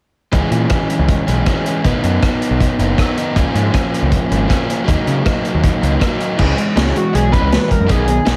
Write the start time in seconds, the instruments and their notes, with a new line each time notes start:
0.32 picked electric bass C#2, overdriven electric guitar E3 G#3 C#4, kick, closed hi-hat
0.51 picked electric bass A#2, overdriven electric guitar G#3 C#4, closed hi-hat
0.70 overdriven electric guitar E3 G#3 C#4, kick, cross-stick, closed hi-hat
0.90 closed hi-hat
0.99 picked electric bass C#2
1.09 kick, closed hi-hat
1.27 picked electric bass B1, overdriven electric guitar G#3 C#4, closed hi-hat
1.46 overdriven electric guitar E3 G#3 C#4, kick, cross-stick, closed hi-hat
1.64 overdriven electric guitar G#3 C#4, closed hi-hat
1.84 picked electric bass B1, overdriven electric guitar D#3 B3 D#4, kick, closed hi-hat
2.04 picked electric bass F#2, overdriven electric guitar B3 D#4, closed hi-hat
2.22 overdriven electric guitar D#3 B3 D#4, kick, cross-stick, closed hi-hat
2.42 closed hi-hat
2.51 picked electric bass B1
2.60 kick, closed hi-hat
2.79 picked electric bass F#1, overdriven electric guitar B3 D#4, closed hi-hat
2.98 overdriven electric guitar D#3 B3 D#4, kick, cross-stick, closed hi-hat
3.17 overdriven electric guitar B3 D#4, closed hi-hat
3.36 picked electric bass C#2, overdriven electric guitar F3 A#3 C#4, kick, closed hi-hat
3.55 picked electric bass G#2, overdriven electric guitar A#3 C#4, closed hi-hat
3.73 overdriven electric guitar F3 A#3 C#4, kick, cross-stick, closed hi-hat
3.94 closed hi-hat
4.02 picked electric bass C#2
4.12 kick, closed hi-hat
4.30 picked electric bass G#1, overdriven electric guitar A#3 C#4, closed hi-hat
4.48 overdriven electric guitar F3 A#3 C#4, kick, cross-stick, closed hi-hat
4.67 overdriven electric guitar A#3 C#4, closed hi-hat
4.84 picked electric bass D#2, overdriven electric guitar F#3 A#3 D#4
4.88 kick, closed hi-hat
5.05 picked electric bass C#3, overdriven electric guitar A#3 D#4, closed hi-hat
5.24 overdriven electric guitar F#3 A#3 D#4, kick, cross-stick, closed hi-hat
5.45 closed hi-hat
5.54 picked electric bass D#2
5.64 kick, closed hi-hat
5.81 picked electric bass C#2, overdriven electric guitar A#3 D#4, closed hi-hat
6.00 overdriven electric guitar F#3 A#3 D#4, kick, cross-stick, closed hi-hat
6.18 overdriven electric guitar A#3 D#4, closed hi-hat
6.38 picked electric bass C#2, overdriven electric guitar E3 G#3 C#4, kick, crash
6.57 overdriven electric guitar E3 G#3, closed hi-hat
6.76 picked electric bass C#2, overdriven electric guitar E3 G#3 C#4, snare, closed hi-hat
6.96 overdriven electric guitar E3 G#3, analog synth lead F#4, closed hi-hat
7.13 picked electric bass B1, overdriven electric guitar E3 G#3, analog synth lead G#4, closed hi-hat
7.32 overdriven electric guitar E3 G#3 C#4, analog synth lead B4, kick, closed hi-hat
7.42 picked electric bass C#2
7.50 overdriven electric guitar E3 G#3, snare, closed hi-hat
7.68 overdriven electric guitar E3 G#3, analog synth lead A#4, kick, closed hi-hat
7.80 picked electric bass F#2
7.87 picked electric bass B1, overdriven electric guitar D#3 B3 D#4, analog synth lead G#4, kick, closed hi-hat
8.07 overdriven electric guitar D#3 B3, closed hi-hat
8.25 picked electric bass B1, overdriven electric guitar D#3 B3 D#4, snare, closed hi-hat